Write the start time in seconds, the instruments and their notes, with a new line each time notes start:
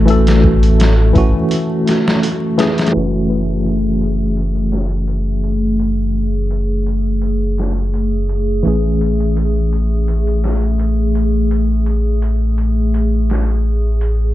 Already playing: analog synth bass A1, tine electric piano E3 A3 C#4 A4, ambient pad A3 F#4, synth texture A3
0.05 tine electric piano E3 A3 C#4, closed hi-hat
0.10 tine electric piano A4
0.27 snare, closed hi-hat
0.44 kick
0.63 closed hi-hat
0.80 snare, closed hi-hat
1.13 analog synth bass A1, tine electric piano E3 A3 C#4, kick, closed hi-hat
1.18 tine electric piano F#4
1.51 closed hi-hat
1.87 snare, closed hi-hat
2.08 snare
2.23 closed hi-hat
2.58 tine electric piano E3 A3 C#4 G#4, snare, closed hi-hat
2.78 snare, closed hi-hat
2.86 snare, closed hi-hat
2.92 analog synth bass F#1, tine electric piano E3 A3 C#4, ambient pad A3 G#4
2.97 tine electric piano F#4
3.30 closed hi-hat
3.49 closed hi-hat
3.66 closed hi-hat
4.01 closed hi-hat
4.37 closed hi-hat
4.55 closed hi-hat
4.72 snare, open hi-hat
4.91 closed hi-hat
5.08 closed hi-hat
5.44 closed hi-hat
5.79 closed hi-hat
6.51 closed hi-hat
6.86 closed hi-hat
7.22 closed hi-hat
7.58 snare, closed hi-hat
7.94 closed hi-hat
8.29 closed hi-hat
8.63 analog synth bass A1, tine electric piano E3 A3 C#4, closed hi-hat
8.68 tine electric piano G#4
9.01 closed hi-hat
9.20 closed hi-hat
9.37 closed hi-hat
9.73 closed hi-hat
10.08 closed hi-hat
10.27 closed hi-hat
10.44 snare, open hi-hat
10.63 closed hi-hat
10.79 closed hi-hat
11.15 closed hi-hat
11.51 closed hi-hat
11.86 closed hi-hat
12.22 closed hi-hat
12.58 closed hi-hat
12.94 closed hi-hat
13.30 snare, closed hi-hat
14.01 closed hi-hat